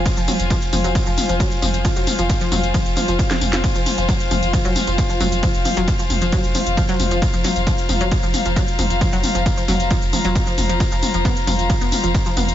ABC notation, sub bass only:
X:1
M:4/4
L:1/16
Q:1/4=134
K:Fm
V:1 name="Sub bass" clef=bass
z F,,, z F,,, z2 F,,, F,,, z F,,, z F,,, z2 F,,, F,,, | z F,,, z F,,, z2 F,,, F,,, z F,,, z F,,, z2 F,,, F,,, | z F,,, z F,,, z2 F,,, F,,, z F,,, z F,,, z2 F,,, F,,, | z F,,, z F,,, z2 F,,, F,,, z F,,, z F,,, z2 F,,, F,,, |
z F,,, z F,,, z2 F,,, F,,, z F,,, z F,,, z2 F,,, F,,, | z F,,, z F,,, z2 F,,, F,,, z F,,, z F,,, z2 F,,, F,,, | z F,,, z F,,, z2 F,,, F,,, z F,,, z F,,, z2 F,,, F,,, |]